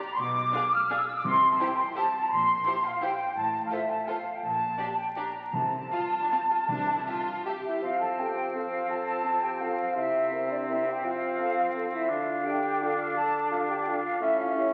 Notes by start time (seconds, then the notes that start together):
Already playing: A#5
0.12 C6
0.19 B1 B2 D6
0.53 D4 G#4 F5
0.73 F6
0.90 D4 G#4 F5 E6
1.17 D6
1.24 C2 C3 C6
1.51 A5
1.59 E4 G4 C5 G5
1.77 C6
1.95 E4 G4 C5 A5
2.22 A#5
2.30 A#1 A#2 C6
2.65 E4 G4 C5
2.84 F5
3.01 E4 G4 C5 G5
3.36 A1 A2 A5
3.63 F5
3.71 F4 A4 C5 E5
3.89 A5
4.07 F4 A4 C5 F5
4.35 G5
4.43 A#1 A#2 A5
4.79 D4 G4 D5
4.98 G5
5.16 D4 G4 D5 A#5
5.53 C2 C3 A5
5.92 F4 F5
6.23 D4
6.31 C4 F4 F5
6.51 F4
6.68 C2 C3 D4
6.98 E4
7.06 F4 G4 E5
7.46 G4 E5
7.65 E4 E5
7.82 F3 C4 F4 F5
8.00 A4 A5
8.19 C4 G4 A4 G5
8.55 C4 F4 A4 F5
8.89 A4 A5
9.25 C4 A4
9.42 G4 G5
9.60 C4 F4 A4 F5
9.95 C3 C4 E4 E5
10.31 C4 A#4
10.50 D4 D5
10.69 C4 E4 A#4 E5
10.87 G4 G5
11.04 F3 F4 F5
11.38 C4 A4
11.74 C4 A4
11.92 E4 E5
12.09 D3 D4 F4 F5
12.44 D4 G4 A4 G5
12.81 D4 F4 A4 F5
13.15 A4 A5
13.51 D4 F4 A4 F5
13.69 G4 G5
13.80 G5
13.86 D4 F4 A4 F5
14.21 A2 C#4 E4 E5
14.38 F4 F5
14.56 C#4 E4 G4 E5